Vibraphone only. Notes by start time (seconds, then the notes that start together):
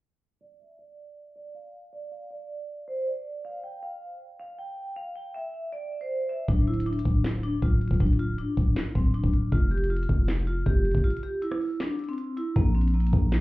0.41 D5
0.60 E5
0.79 D5
1.36 D5
1.55 F5
1.93 D5
2.12 F5
2.31 D5
2.88 C5
3.07 D5
3.45 F5
3.64 G5
3.83 F5
4.40 F5
4.59 G5
4.96 F5
5.15 G5
5.34 E5
5.72 D5
6.01 C5
6.29 E5
6.48 D4
6.68 E4
6.86 D4
7.43 D4
7.62 F4
8.00 D4
8.19 F4
8.38 D4
8.95 C4
9.14 D4
9.52 F4
9.71 G4
9.90 F4
10.47 F4
10.66 G4
11.04 F4
11.23 G4
11.42 E4
11.80 D4
12.09 C4
12.37 E4
12.56 A#3
12.75 C4
12.94 A#3